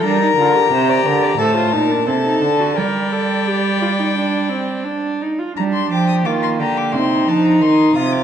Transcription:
<<
  \new Staff \with { instrumentName = "Violin" } { \time 4/4 \key g \minor \tempo 4 = 88 bes''2 a''4 a''4 | g''2.~ g''8 r8 | bes''16 c'''16 d'''16 ees'''16 d'''16 c'''16 bes''16 d'''16 c'''8 a''16 bes''16 c'''8 ees'''16 d'''16 | }
  \new Staff \with { instrumentName = "Violin" } { \time 4/4 \key g \minor bes'4 c''16 d''16 bes'16 d''16 c''8 bes'8 a'4 | d''2.~ d''8 r8 | r8 g'8 f'8 g'8 c'8 d'8 ees'8 f'8 | }
  \new Staff \with { instrumentName = "Viola" } { \time 4/4 \key g \minor d'16 ees'16 f'16 g'4~ g'16 a'16 f'16 ees'16 d'16 c'16 ees'16 d'16 fis'16 | bes'8 a'8 g'8 f'16 ees'16 d'8 c'8 d'8 ees'16 f'16 | d'4 bes4 ees'2 | }
  \new Staff \with { instrumentName = "Cello" } { \clef bass \time 4/4 \key g \minor g8 d8 c8 d8 a,8 bes,8 c8 d8 | g2.~ g8 r8 | g8 f8 ees8 d8 c8 f8 ees8 c8 | }
>>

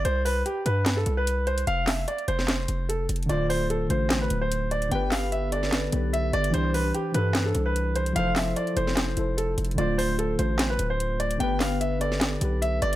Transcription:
<<
  \new Staff \with { instrumentName = "Grand piano" } { \time 4/4 \key d \dorian \tempo 4 = 148 c''8 b'8 g'8 b'8. a'8 b'8. c''8 | f''8 e''8 d''8 c''4. a'8 r8 | d''8 c''8 a'8 c''8. b'8 c''8. d''8 | g''8 f''8 e''8 d''4. e''8 d''8 |
c''8 b'8 g'8 b'8. a'8 b'8. c''8 | f''8 e''8 d''8 c''4. a'8 r8 | d''8 c''8 a'8 c''8. b'8 c''8. d''8 | g''8 f''8 e''8 d''4. e''8 d''8 | }
  \new Staff \with { instrumentName = "Synth keys" } { \time 4/4 \key d \dorian r1 | r1 | <d a f' c''>8 r16 <d a f' c''>8 r16 <d a f' c''>4. r4 | <d b g' b'>4 r8 <d b g' a'>8. r16 <d b g' b'>4 r8 |
<e d' g' c''>8 r16 <e d' g' c''>8 r16 <e d' g' a'>4. r4 | <f e' a' c''>4 r8 <f e' a' c''>8. r16 <f e' a' c''>4 r8 | <d a f' c''>8 r16 <d a f' c''>8 r16 <d a f' c''>4. r4 | <d b g' b'>4 r8 <d b g' a'>8. r16 <d b g' b'>4 r8 | }
  \new Staff \with { instrumentName = "808-style bass" } { \clef bass \time 4/4 \key d \dorian c,4 r8 g,4 c,4. | f,,4 r8 f,,4 f,,4 f,,8 | d,,4. a,,4 d,,4. | g,,2~ g,,8 b,,4 g,,8 |
c,4 r8 g,4 c,4. | f,,4 r8 f,,4 f,,4 f,,8 | d,,4. a,,4 d,,4. | g,,2~ g,,8 b,,4 g,,8 | }
  \new DrumStaff \with { instrumentName = "Drums" } \drummode { \time 4/4 hh8 hho8 hh8 hh8 <hc hh sn>8 hh8 hh8 hh16 hh16 | hh8 <hc hho sn>8 hh16 hh16 hh16 sn16 <hc hh sn>8 hh8 \tuplet 3/2 { hh16 r16 r16 hh16 hh16 hh16 } | hh8 hho8 hh8 hh8 <hc hh sn>8 hh8 hh8 hh16 hh16 | hh8 <hc hho sn>8 hh8 hh16 sn16 <hc hh sn>8 hh8 hh8 hh16 hh16 |
hh8 hho8 hh8 hh8 <hc hh sn>8 hh8 hh8 hh16 hh16 | hh8 <hc hho sn>8 hh16 hh16 hh16 sn16 <hc hh sn>8 hh8 \tuplet 3/2 { hh16 r16 r16 hh16 hh16 hh16 } | hh8 hho8 hh8 hh8 <hc hh sn>8 hh8 hh8 hh16 hh16 | hh8 <hc hho sn>8 hh8 hh16 sn16 <hc hh sn>8 hh8 hh8 hh8 | }
>>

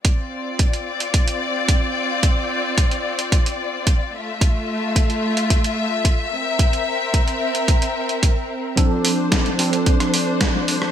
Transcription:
<<
  \new Staff \with { instrumentName = "String section" } { \time 4/4 \key d \minor \tempo 4 = 110 << { d''1~ | d''2.~ d''8 e''8~ | e''1~ | e''1 |
r1 | } \\ { <c' f'>1~ | <c' f'>2.~ <c' f'>8 <a f'>8~ | <a f'>2.~ <a f'>8 <c' bes'>8~ | <c' bes'>1 |
<d' c''>1 | } >> }
  \new Staff \with { instrumentName = "Tine electric piano" } { \time 4/4 \key d \minor r1 | r1 | r1 | r1 |
<f c' d' a'>4. <f c' d' a'>2~ <f c' d' a'>8 | }
  \new DrumStaff \with { instrumentName = "Drums" } \drummode { \time 4/4 <hh bd>4 <hh bd>16 hh8 hh16 <hh bd>16 hh8. <hh bd>4 | <hh bd>4 <hh bd>16 hh8 hh16 <hh bd>16 hh8. <hh bd>4 | <hh bd>4 <hh bd>16 hh8 hh16 <hh bd>16 hh8. <hh bd>4 | <hh bd>16 hh8. <hh bd>16 hh8 hh16 <hh bd>16 hh8 hh16 <hh bd>4 |
<hh bd>8 hho8 <hh bd sn>16 hh16 hho16 hh16 <hh bd>16 <hh ss>16 hho8 <hh bd sn>8 hho16 ss16 | }
>>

